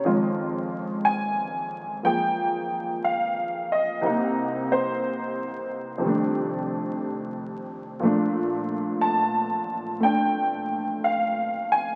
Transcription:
honky-tonk piano
Already playing: C#5
0.04 F2 D#3 G#3 F4
1.05 G#5
2.03 F3 A#3 G#4 G5
3.04 F5
3.72 D#5
4.01 C2 C3 A#3
4.06 D#4
4.72 C5
5.98 F2 C3 D#3
6.04 G3 A3
6.08 D4
8.00 A#2 F3 A3
8.05 D4
9.01 A5
10.00 A3 D4 G5
11.04 F5
11.72 G#5

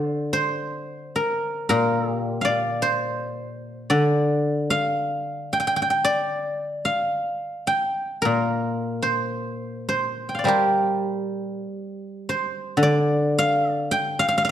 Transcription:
guzheng
Already playing: D3 A#4 C5 D5
0.33 C5
1.16 A#4
1.69 A#2 A#4
2.12 G4
2.41 D5 F5
2.82 C5
3.90 D3 D5
4.70 F5
5.53 G5
5.60 G5
5.67 G5
5.76 G5
5.82 G5
5.90 G5
6.04 D5
6.85 F5
7.67 G5
8.22 A#2 A#4
9.02 C5
9.89 C5
10.29 G5
10.35 F5
10.39 D5
10.44 G3 A#4 C5
10.48 G4
12.29 C5
12.77 D3
12.83 D5
13.39 F5
13.72 D5
13.91 G5
14.19 F5
14.28 F5
14.38 F5
14.45 F5

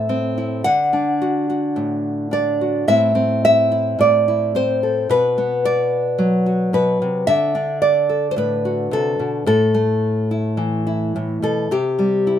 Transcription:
nylon-string guitar
Already playing: A2 A4 E5
0.09 C4
0.38 E4
0.64 D3 F#5
0.93 D4
1.22 F#4
1.50 F#4
1.76 A2
2.31 D4 D5
2.61 F#4
2.88 A2 C4 E4 E5
3.15 C4
3.45 E5
3.72 E4
3.99 A2 D5
4.28 E4
4.55 C4 C5
4.83 A4
5.09 B2 B4
5.38 B3
5.65 D5
6.18 F#3
6.46 F#4
6.73 B2 B4
7.02 C3
7.27 D3 E5
7.55 D4
7.82 D5
8.09 A4
8.31 C5
8.36 A2 B4
8.65 F#4
8.91 C3 A4
9.19 B2
9.46 A2 A4
9.74 A3
10.31 E4
10.57 E3
10.87 E4
11.16 A2
11.42 B2 A4
11.71 C3 G4
11.99 G3
12.27 E4

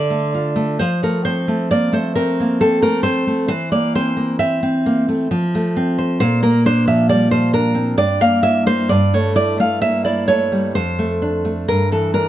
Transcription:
nylon-string guitar
Already playing: D3 D5
0.10 A3
0.34 F4
0.56 A3
0.79 F3 C5
1.03 A3 A#4
1.25 C4 C5
1.48 A3
1.71 A#3 D5
1.93 A3 C5
2.15 C4 A#4
2.40 A#3
2.61 C4 A4
2.82 A3 A#4
3.03 C4 C5
3.27 A3
3.48 E3 C5
3.72 A#3 D5
3.95 C4 C5
4.17 A#3
4.39 C4 E5
4.63 C4
4.86 A#3
5.09 A3
5.31 F3
5.55 A3
5.77 C4
5.98 C5
6.20 A#2 C5
6.42 A#3 A#4
6.66 D4 C5
6.88 F3 E5
7.09 G3 D5
7.31 F3 C5
7.53 D4 A#4
7.75 C4
7.97 G2 D5
8.21 A#3 F5
8.43 E4 E5
8.66 A#3 C5
8.89 G2 D5
9.14 A3 C#5
9.36 E4 D5
9.59 A3 F5
9.82 A#3 E5
10.05 E4 D5
10.28 A3 C#5
10.52 G3
10.75 F2 C5
10.99 A3
11.22 D4
11.45 A3
11.68 G2 A#4
11.92 E3 A4
12.14 D4 A#4

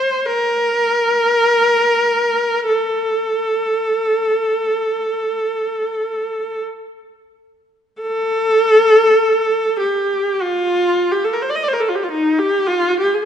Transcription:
viola
Already playing: C5
0.26 A#4
2.68 A4
8.01 A4
9.80 G4
10.41 F4
11.11 G4
11.24 A4
11.33 A#4
11.42 C5
11.49 D5
11.55 D#5
11.63 D5
11.68 C5
11.73 A#4
11.80 A4
11.88 F4
11.95 G4
12.03 F4
12.11 D#4
12.39 G4
12.67 F4
13.00 G4
13.14 G#4

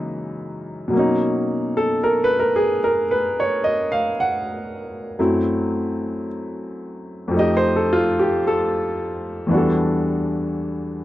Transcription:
grand piano
Already playing: F#2 C#3 E3 G#3 A#3 D#4
0.88 B2 F#3
0.93 A#3 C#4
0.99 D#4
1.77 A4
2.04 A#4
2.24 B4
2.40 A#4
2.56 G#4
2.84 A#4
3.11 B4
3.40 C#5
3.64 D#5
3.92 F5
4.20 F#5
5.19 F#2 F#3 A3 C4 E4
7.28 F2 F3
7.34 A3 D#4
7.39 G4 D#5
7.57 C5
7.76 A4
7.93 F4
8.19 G4
8.47 A4
9.47 E2 E3
9.51 D4 F#4
9.55 G3 A4

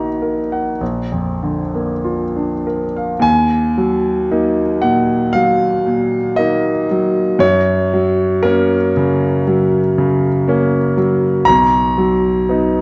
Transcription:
grand piano
Already playing: A#1 A#2 D#3 A#3 D#4 F#4 A#5 B5
0.22 A#4
0.52 F#5
0.81 A#1
1.12 F2
1.43 D3
1.75 A#3
2.04 F4
2.36 D4
2.67 A#4
2.97 F5
3.19 D#2 G#5
3.78 F#3
4.31 A#3 D#4
4.82 A#2 F#5
5.33 F#3 F5
5.86 A#2
6.36 A#3 D#4 D#5
6.91 F#3
7.39 F#2 C#5
7.94 F#3
8.43 A#3 C#4 A#4
8.97 C#3
9.48 F#3
9.98 C#3
10.48 A#3 C#4
10.97 F#3
11.45 B1 A#5
11.98 F#3
12.49 B3 D#4

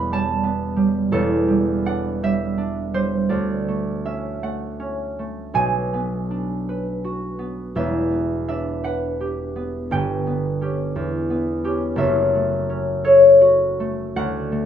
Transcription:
harp
Already playing: E1 E2 G3 A3 B3 A4 D5 E5 B5
0.12 G3 A5
0.43 B3
0.76 G3
1.11 E1 E2 A4
1.48 G3
1.86 D4 F#5
2.23 G3 E5
2.58 D4
2.94 G3 C5
3.29 D2 D5
3.68 A3
4.05 C#4 E5
4.43 A3 F#5
4.80 C#4
5.19 A3
5.54 B1 B2 G#5
5.93 B3
6.31 D4
6.69 B4
7.04 F#4
7.39 B3
7.75 E1 E2 E5
8.11 B3
8.48 D4 E5
8.84 B4 F#5
9.21 G4
9.56 B3
9.91 G1 G2 G5
10.27 B3
10.61 C#4 G4
10.96 E2
11.30 B3
11.64 C#4 G4
11.96 F#1 F#2 E5
12.35 A3
12.70 C#4
13.04 A4 C#5
13.41 F#4
13.80 A3
14.16 D2 F#5
14.52 A3

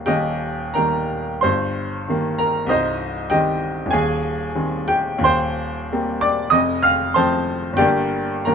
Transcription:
upright piano
Already playing: D#1 D#2 D#3 G3 A#3 G4 D#5
0.06 D#1 D#2 G4 D#5 G5
0.74 D#3 G3 A#3 A#4 G5 A#5
1.41 G1 G2 C5 C6
2.09 D#3 G3 A#3
2.38 A#4 A#5
2.67 C1 C2 D#4 C5 D#5
3.30 D#3 G3 C4 G4 D#5 G5
3.86 D#1
3.91 D#2 G#4 G#5
4.55 D#3 G3 C4
4.88 G4 G5
5.18 D#1 D#2
5.24 C5 G5 C6
5.92 G3 A#3 C4
6.21 D5 D6
6.50 F1 F2 D#5 D#6
6.83 F5 F6
7.14 F3 A3 C4 C5 A5 C6
7.73 G1 G5
7.78 G2 D3 G3 A#3 G4 D5
8.45 D#1 D#2 D#3 G3 A#3 A#4 G5 A#5

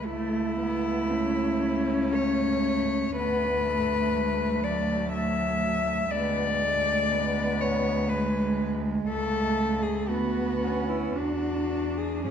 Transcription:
cello
0.06 C#2 A3 E4
0.59 B3
1.10 C#4
2.14 A3 C#5
3.16 D2 A3 B3 B4
3.66 A3
4.15 G#3
4.63 F#3 D5
5.13 E5
6.11 D2 G#3 B3 D5
6.62 A3
7.12 B3
7.61 C#5
8.09 G#3 B4
9.08 C#2 A3 A4
9.83 G#4
10.09 D2 B3 F#4
10.63 C#4
10.89 E4
11.15 E2 D4 F#4
11.98 G#4
12.25 A2 C#4 G#4

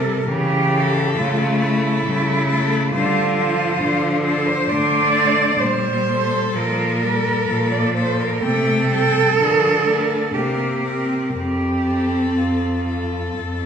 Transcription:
cello
Already playing: C3 G3 A4 A#4
0.27 C#3 E3 G4
0.72 A4
1.16 C#3 A3 F4
1.60 E4 A4
2.06 C#3 G3
2.49 A3 A4
2.92 D3 G3 F4 C5
3.37 F3 C5
3.82 D3
4.24 A4 C5
4.47 C5
4.69 D3 A3 D5
5.14 C5
5.60 A#2 G3 C5
6.06 A4
6.55 A#2 F3 A#4
7.00 G3 A4
7.49 A#2 F3
7.72 D5
7.96 A4 C5
8.20 A#4
8.43 C3 A3 A4 G5
8.90 G3 G5
9.38 D3 F3 A#4
9.86 A3 A#4
10.33 C3 A#3 G4 A#4
10.84 C4 A#4
11.35 F2 C4 G4
11.87 A4
12.37 F2 F4
12.88 A4
13.38 F2

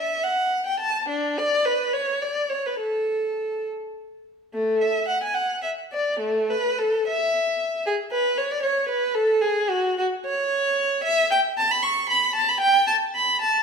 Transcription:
violin
Already playing: E5
0.23 F#5
0.66 G5
0.80 A5
1.09 D4
1.38 D5
1.65 B4
1.93 C#5
2.22 D5
2.49 C#5
2.66 B4
2.80 A4
4.54 A3
4.81 E5
5.08 F#5
5.23 G#5
5.34 F#5
5.62 E5
5.93 D5
6.20 A3
6.50 B4
6.79 A4
7.08 E5
7.86 G#4
8.11 B4
8.38 C#5
8.51 D5
8.63 C#5
8.89 B4
9.15 A4
9.41 G#4
9.70 F#4
9.98 F#4
10.26 C#5
11.04 E5
11.31 G5
11.57 A5
11.71 B5
11.83 C#6
12.10 B5
12.35 A5
12.49 B5
12.61 G5
12.87 A5
13.15 B5
13.42 A5

